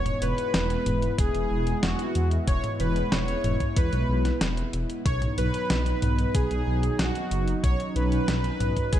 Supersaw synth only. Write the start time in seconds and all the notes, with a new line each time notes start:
Already playing: C#5
0.22 B4
1.19 G#4
1.83 F#4
2.48 C#5
2.80 B4
3.12 C#5
3.77 B4
5.06 C#5
5.38 B4
6.34 G#4
6.99 F#4
7.64 C#5
7.96 B4
8.93 G#4